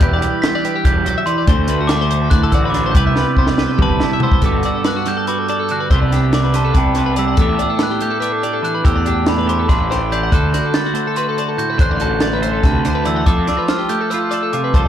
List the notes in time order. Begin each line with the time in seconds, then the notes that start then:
Already playing: G3
0.00 E1 E3 G4 B4 G6, kick, closed hi-hat
0.13 D5
0.22 G3 B4, closed hi-hat
0.42 B3 C5 B6, snare, closed hi-hat
0.55 D4 D5
0.65 G4 B4, closed hi-hat
0.76 G4
0.84 E1 G3 B4 G6, kick, closed hi-hat
1.06 F#3 D5, closed hi-hat
1.18 E5
1.26 E3 D5 C6, closed hi-hat
1.38 D5
1.47 D2 D3 A3 D4 F#4 C5, kick, closed hi-hat
1.68 A3 B4, closed hi-hat
1.81 F#4
1.87 D4 A4 D6, snare, closed hi-hat
2.01 C5
2.11 C5, closed hi-hat
2.22 A4
2.30 D2 A2 B4 F#6, kick, closed hi-hat
2.43 A4
2.52 A1 F#4 D5 E6, kick, closed hi-hat
2.65 B4
2.70 D6
2.74 D4, snare, closed hi-hat
2.86 C5
2.91 C2 C3 G6, kick, closed hi-hat
2.96 G3 B3 E4 B4
3.07 E5
3.16 G3 B4, snare
3.37 B3 C5, kick
3.47 D5, snare
3.58 B4 C5, snare
3.72 A4
3.78 C2 G3 A5, kick, mid tom
3.82 B4
3.89 kick
4.00 E4 D5, snare
4.13 E5
4.20 B3 C5 E6, floor tom
4.32 C5, kick
4.41 G1 G2 G3 B3 F#4 A4, kick, closed hi-hat
4.45 A4 D6
4.63 F#4 D5 E6, closed hi-hat
4.75 A4
4.84 B4 F#6, snare, closed hi-hat
4.96 F#4
5.06 G3 A4 G6, snare, closed hi-hat
5.17 A4
5.27 F#4 B4 D6, closed hi-hat
5.39 A4
5.48 A4 D5, closed hi-hat
5.59 A4
5.69 D3 F#4 F#6, closed hi-hat
5.80 B4
5.90 C2 C3 G3 C5 E6, kick, closed hi-hat
5.94 B3 D4 B4
6.02 D5
6.12 D4 G4, snare, closed hi-hat
6.33 D5 D6, snare, closed hi-hat
6.44 B4
6.54 G3 B4 C5 A5, snare, closed hi-hat
6.65 A4
6.74 C2 D4 B4 G5, kick, closed hi-hat
6.95 B4 C5, snare, closed hi-hat
7.06 B4
7.16 G3 D4 D5 E6, closed hi-hat
7.28 F#5
7.37 A1 A2 A3 B3 D4 A4, kick, closed hi-hat
7.41 G4 D6
7.59 D4 D5 E6, closed hi-hat
7.70 A4
7.79 B4, snare, closed hi-hat
7.83 F#6
7.91 G4
8.00 A3 G4 G6, closed hi-hat
8.10 A4
8.20 D4 B4 D6, closed hi-hat
8.32 A4
8.43 G4 D5, closed hi-hat
8.53 A4
8.62 E3 D4 F#6, closed hi-hat
8.75 B4
8.84 E2 A2 G4 C5 E6, kick, closed hi-hat
8.96 D5
9.05 D4 G4, closed hi-hat
9.26 D5 B5, snare, closed hi-hat
9.38 B4
9.47 A3 G4 C5 D6, closed hi-hat
9.59 A4
9.68 A1 D4 B4 C6, kick, snare, closed hi-hat
9.91 G4 C5, snare, closed hi-hat
10.02 B4
10.11 E3 D4 D5 G6, closed hi-hat
10.23 F#5
10.32 D2 D3 A4 C5 F#6, kick, closed hi-hat
10.54 F#4 D5 G6, snare, closed hi-hat
10.65 A4
10.74 B4 A6, snare, closed hi-hat
10.86 F#4
10.94 A3 C5, closed hi-hat
11.07 A4
11.16 F#4 B4 C6, closed hi-hat
11.29 A4
11.37 C5 D5, closed hi-hat
11.48 A4
11.57 A2 F#4 G6, closed hi-hat
11.70 B4
11.78 A1 D3 C5 F#6, kick, closed hi-hat
11.91 D5
12.00 F#4 A4 G6, closed hi-hat
12.20 D5 A6, snare, closed hi-hat
12.33 B4
12.42 A3 C5, closed hi-hat
12.53 A4
12.63 D2 C3 B4 A5, kick, snare, closed hi-hat
12.85 D3 C5, snare, closed hi-hat
12.95 B4
13.05 E3 D5 E6, closed hi-hat
13.16 F#5
13.26 F2 F3 A4 D6, kick, closed hi-hat
13.47 D4 D5 E6, snare, closed hi-hat
13.57 F4 B4
13.68 C5 F6, snare, closed hi-hat
13.78 G4
13.89 A3 G4 G6, closed hi-hat
14.01 A4
14.10 F4 B4 E6, closed hi-hat
14.19 A4
14.31 A4 D5, closed hi-hat
14.43 A4
14.53 C3 F4 D6, closed hi-hat
14.64 B4
14.74 C2 F3 A4 C5 A5, kick, closed hi-hat